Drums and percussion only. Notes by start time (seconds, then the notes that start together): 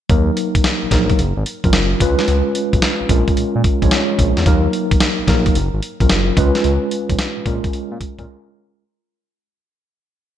0.10 kick, closed hi-hat
0.37 closed hi-hat
0.55 kick, closed hi-hat
0.64 snare, closed hi-hat
0.91 kick, snare, closed hi-hat
1.10 kick, closed hi-hat
1.19 closed hi-hat
1.46 closed hi-hat
1.64 kick, closed hi-hat
1.73 snare, closed hi-hat
2.00 kick, closed hi-hat
2.19 snare, closed hi-hat
2.28 closed hi-hat
2.55 closed hi-hat
2.73 kick, closed hi-hat
2.82 snare, closed hi-hat
3.09 kick, closed hi-hat
3.28 kick, closed hi-hat
3.37 closed hi-hat
3.64 kick, closed hi-hat
3.82 kick, closed hi-hat
3.91 snare, closed hi-hat
4.19 kick, closed hi-hat
4.37 snare, closed hi-hat
4.46 kick, closed hi-hat
4.73 closed hi-hat
4.91 kick, closed hi-hat
5.00 snare, closed hi-hat
5.28 kick, snare, closed hi-hat
5.46 kick, closed hi-hat
5.55 closed hi-hat
5.83 closed hi-hat
6.00 kick, closed hi-hat
6.10 snare, closed hi-hat
6.37 kick, closed hi-hat
6.55 snare, closed hi-hat
6.64 closed hi-hat
6.91 closed hi-hat
7.10 kick, closed hi-hat
7.19 snare, closed hi-hat
7.46 kick, closed hi-hat
7.64 kick, closed hi-hat
7.73 closed hi-hat
8.01 kick, closed hi-hat
8.19 kick, closed hi-hat